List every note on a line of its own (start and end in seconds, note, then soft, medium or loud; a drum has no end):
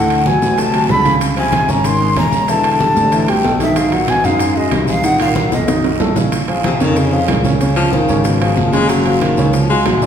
0.00 0.36 D2 medium
0.00 0.29 A2 medium
0.00 0.20 D3 medium
0.00 0.20 D4 medium
0.00 0.28 F#5 medium
0.10 high conga soft
0.10 high timbale medium
0.10 maracas soft
0.26 0.60 B2 medium
0.26 0.52 F#3 medium
0.26 0.52 F#4 medium
0.26 0.61 G#5 medium
0.26 high bongo soft
0.26 high conga loud
0.26 short guiro medium
0.26 maracas soft
0.42 0.86 A1 medium
0.42 high bongo soft
0.42 high conga soft
0.42 short guiro medium
0.42 maracas medium
0.58 0.92 C3 medium
0.58 0.71 D3 medium
0.58 0.71 D4 medium
0.58 0.93 A5 loud
0.58 high bongo medium
0.58 high conga soft
0.58 high timbale medium
0.58 long guiro medium
0.58 maracas medium
0.73 0.86 F#3 medium
0.73 0.87 F#4 medium
0.73 high bongo soft
0.73 high conga soft
0.73 high timbale medium
0.73 maracas soft
0.89 1.63 C#2 medium
0.89 1.14 D3 medium
0.89 1.02 A3 medium
0.89 1.02 A4 medium
0.89 1.14 B5 loud
0.89 high bongo medium
0.89 low bongo medium
0.89 low timbale medium
0.89 short guiro medium
0.89 maracas soft
1.05 1.31 C#3 medium
1.05 1.31 C#4 medium
1.05 high bongo soft
1.05 high conga medium
1.05 high timbale medium
1.05 short guiro medium
1.05 maracas medium
1.21 high bongo medium
1.21 high conga soft
1.21 high timbale medium
1.21 long guiro medium
1.21 maracas medium
1.37 1.71 C3 medium
1.37 1.63 F3 medium
1.37 1.63 F4 medium
1.37 1.72 G#5 medium
1.37 high bongo soft
1.37 high conga soft
1.37 high timbale medium
1.37 maracas soft
1.52 high bongo medium
1.52 high conga loud
1.52 high timbale medium
1.52 short guiro medium
1.52 maracas soft
1.68 2.13 G#1 medium
1.68 1.87 C#3 medium
1.68 1.95 C#4 medium
1.68 1.95 C#5 medium
1.68 1.88 A#5 medium
1.68 high bongo soft
1.68 high conga soft
1.68 short guiro medium
1.68 maracas medium
1.84 2.17 D#3 medium
1.84 2.17 C6 loud
1.84 high bongo medium
1.84 high conga soft
1.84 high timbale medium
1.84 long guiro medium
1.84 maracas medium
2.01 2.14 G#3 medium
2.01 2.14 G#4 medium
2.01 high conga soft
2.01 maracas soft
2.16 2.90 E1 medium
2.16 2.51 C#3 medium
2.16 2.43 C#4 medium
2.16 2.43 C#5 medium
2.16 2.52 A#5 loud
2.16 high bongo medium
2.16 low bongo medium
2.16 high conga medium
2.16 high timbale loud
2.16 short guiro medium
2.16 maracas soft
2.32 high bongo soft
2.32 high conga medium
2.32 short guiro medium
2.32 maracas medium
2.48 3.31 D3 medium
2.48 2.74 E3 medium
2.48 2.74 E4 medium
2.48 3.31 A5 loud
2.48 high bongo medium
2.48 high conga soft
2.48 high timbale medium
2.48 long guiro medium
2.48 maracas medium
2.64 high conga soft
2.64 high timbale medium
2.80 3.06 G3 medium
2.80 3.06 G4 medium
2.80 high bongo medium
2.80 high conga medium
2.80 short guiro medium
2.80 maracas soft
2.96 3.41 A1 loud
2.96 high bongo soft
2.96 high conga soft
2.96 short guiro medium
2.96 maracas medium
3.12 3.25 E3 medium
3.12 3.25 E4 medium
3.12 high bongo medium
3.12 high conga soft
3.12 high timbale medium
3.12 long guiro medium
3.12 maracas medium
3.28 3.60 B2 medium
3.28 3.41 G3 medium
3.28 3.41 G4 medium
3.28 3.61 G5 medium
3.28 high bongo soft
3.28 high conga soft
3.28 high timbale medium
3.28 maracas soft
3.44 4.18 B1 medium
3.44 3.57 A3 medium
3.44 3.57 A4 medium
3.44 high bongo medium
3.44 low bongo medium
3.44 high conga soft
3.44 short guiro medium
3.44 maracas soft
3.60 3.78 G2 medium
3.60 3.86 D#3 medium
3.60 3.86 D#4 medium
3.60 3.79 E5 medium
3.60 high bongo soft
3.60 high conga medium
3.60 high timbale medium
3.60 short guiro medium
3.60 maracas medium
3.76 3.94 G#2 medium
3.76 3.94 F5 loud
3.76 high bongo medium
3.76 high conga soft
3.76 high timbale medium
3.76 long guiro medium
3.76 maracas loud
3.92 4.10 A#2 medium
3.92 4.18 F#3 medium
3.92 4.18 F#4 medium
3.92 4.11 F#5 medium
3.92 high bongo soft
3.92 high conga soft
3.92 high timbale medium
3.92 maracas soft
4.08 4.26 B2 medium
4.08 4.27 G#5 medium
4.08 high bongo medium
4.08 high conga medium
4.08 high timbale medium
4.08 short guiro medium
4.08 maracas soft
4.24 4.68 F#2 medium
4.24 4.58 G#2 medium
4.24 4.50 D#4 medium
4.24 4.50 D#5 medium
4.24 4.59 F5 medium
4.24 high bongo soft
4.24 high conga soft
4.24 short guiro medium
4.24 maracas medium
4.39 high bongo medium
4.39 high conga soft
4.39 high timbale medium
4.39 long guiro medium
4.39 maracas medium
4.56 4.88 F#2 medium
4.56 4.69 G#3 medium
4.56 4.69 G#4 medium
4.56 4.88 D#5 medium
4.56 high conga soft
4.56 maracas soft
4.71 5.46 C2 medium
4.71 4.98 D#4 medium
4.71 4.98 D#5 medium
4.71 high bongo medium
4.71 low bongo medium
4.71 high conga medium
4.71 high timbale medium
4.71 short guiro medium
4.71 maracas soft
4.88 5.06 G#2 medium
4.88 5.07 F5 medium
4.88 high bongo soft
4.88 high conga medium
4.88 short guiro medium
4.88 maracas medium
5.04 5.20 A#2 medium
5.04 5.30 D#3 medium
5.04 5.30 D#4 medium
5.04 5.20 F#5 medium
5.04 high bongo medium
5.04 high conga soft
5.04 high timbale medium
5.04 long guiro medium
5.04 maracas medium
5.20 5.50 A#2 medium
5.20 5.50 F5 medium
5.20 high conga soft
5.20 high timbale loud
5.36 5.62 F#3 medium
5.36 5.62 F#4 medium
5.36 high bongo medium
5.36 high conga loud
5.36 short guiro medium
5.36 maracas soft
5.52 5.97 B1 medium
5.52 6.13 F#2 medium
5.52 6.13 D#5 medium
5.52 high bongo medium
5.52 high conga soft
5.52 short guiro medium
5.52 maracas medium
5.68 5.81 D#3 medium
5.68 5.81 D#4 medium
5.68 low bongo loud
5.68 high conga soft
5.68 high timbale medium
5.68 long guiro medium
5.68 maracas medium
5.84 5.97 F#3 medium
5.84 5.98 F#4 medium
5.84 high conga soft
5.84 high timbale medium
5.84 maracas soft
6.00 6.75 A#1 medium
6.00 6.13 A3 medium
6.00 6.13 A4 medium
6.00 low bongo medium
6.00 high conga soft
6.00 low timbale medium
6.00 short guiro medium
6.00 maracas soft
6.16 6.29 C#3 medium
6.16 6.29 C#4 medium
6.16 low bongo medium
6.16 high conga medium
6.16 low timbale medium
6.16 short guiro medium
6.16 maracas medium
6.32 high bongo medium
6.32 high conga soft
6.32 high timbale medium
6.32 long guiro medium
6.32 maracas medium
6.48 6.62 F3 medium
6.48 6.62 F4 medium
6.48 6.62 G#4 medium
6.48 high bongo soft
6.48 high conga soft
6.48 high timbale medium
6.64 6.83 C3 medium
6.64 6.78 F3 medium
6.64 6.78 F4 medium
6.64 6.78 G#4 medium
6.64 high bongo medium
6.64 high conga loud
6.64 high timbale medium
6.64 short guiro medium
6.64 maracas soft
6.80 7.25 F2 medium
6.80 7.07 C#3 medium
6.80 6.99 D#3 loud
6.80 7.07 C#4 medium
6.80 7.07 C#5 medium
6.80 high bongo soft
6.80 high conga soft
6.80 short guiro medium
6.80 maracas medium
6.96 7.31 C#3 medium
6.96 high bongo medium
6.96 high conga soft
6.96 high timbale medium
6.96 long guiro medium
6.96 maracas medium
7.12 7.39 F3 medium
7.12 7.39 F4 medium
7.12 7.39 G#4 medium
7.12 high conga soft
7.12 maracas soft
7.28 8.04 C#2 medium
7.28 7.62 A#2 medium
7.28 high bongo medium
7.28 low bongo medium
7.28 high conga medium
7.28 high timbale loud
7.28 low timbale medium
7.28 short guiro medium
7.28 maracas soft
7.44 7.58 C#3 medium
7.44 7.58 C#4 medium
7.44 7.58 C#5 medium
7.44 high bongo soft
7.44 high conga medium
7.44 short guiro medium
7.44 maracas medium
7.60 7.76 C#3 medium
7.60 7.87 C#3 medium
7.60 7.87 C#4 medium
7.60 7.87 C#5 medium
7.60 high bongo medium
7.60 high conga soft
7.60 high timbale medium
7.60 long guiro medium
7.60 maracas medium
7.76 7.94 F3 loud
7.76 high conga soft
7.76 high timbale medium
7.76 maracas soft
7.93 8.26 D#3 medium
7.93 8.06 F3 medium
7.93 8.06 F4 medium
7.93 8.06 G#4 medium
7.93 high bongo soft
7.93 high conga medium
7.93 short guiro medium
7.93 maracas soft
8.08 8.54 G#1 medium
8.08 8.35 C#3 medium
8.08 8.35 C#4 medium
8.08 8.36 C#5 medium
8.08 high conga soft
8.08 short guiro medium
8.08 maracas medium
8.24 8.58 B2 medium
8.24 high bongo medium
8.24 high conga soft
8.24 high timbale medium
8.24 long guiro medium
8.24 maracas loud
8.41 8.67 F3 medium
8.41 8.68 F4 medium
8.41 8.68 G#4 medium
8.41 high bongo soft
8.41 high conga soft
8.41 high timbale medium
8.41 maracas soft
8.56 9.32 F#1 medium
8.56 8.74 F3 medium
8.56 high bongo medium
8.56 low bongo medium
8.56 high conga soft
8.56 short guiro medium
8.56 maracas soft
8.73 9.00 C#3 medium
8.73 8.90 G#3 loud
8.73 9.00 C#4 medium
8.73 9.00 C#5 medium
8.73 high bongo soft
8.73 high conga medium
8.73 high timbale medium
8.73 short guiro medium
8.73 maracas medium
8.89 9.23 F#3 medium
8.89 high bongo medium
8.89 high conga soft
8.89 high timbale medium
8.89 long guiro medium
8.89 maracas medium
9.06 9.19 F3 medium
9.06 9.19 F4 medium
9.06 9.19 F#4 medium
9.06 high bongo soft
9.06 high conga soft
9.06 high timbale medium
9.21 9.55 D#3 medium
9.21 9.35 F3 medium
9.21 9.35 F4 medium
9.21 9.35 F#4 medium
9.21 high bongo medium
9.21 high conga medium
9.21 high timbale medium
9.21 short guiro medium
9.21 maracas soft
9.37 9.82 C#2 medium
9.37 9.64 C#3 medium
9.37 9.64 C#4 medium
9.37 9.64 C#5 medium
9.37 high conga soft
9.37 short guiro medium
9.37 maracas medium
9.53 9.69 F3 medium
9.53 high bongo medium
9.53 high conga soft
9.53 high timbale medium
9.53 long guiro medium
9.53 maracas medium
9.70 9.96 F#3 medium
9.70 9.88 G#3 loud
9.70 9.97 F4 medium
9.70 9.97 F#4 medium
9.70 high conga soft
9.70 maracas soft
9.85 10.06 A#1 medium
9.85 10.06 F#3 medium
9.85 high bongo medium
9.85 low bongo medium
9.85 high conga medium
9.85 high timbale loud
9.85 low timbale medium
9.85 short guiro medium
9.85 maracas soft
10.02 10.06 D3 medium
10.02 10.06 D4 medium
10.02 10.06 D5 medium
10.02 high bongo soft
10.02 high conga medium
10.02 short guiro medium
10.02 maracas medium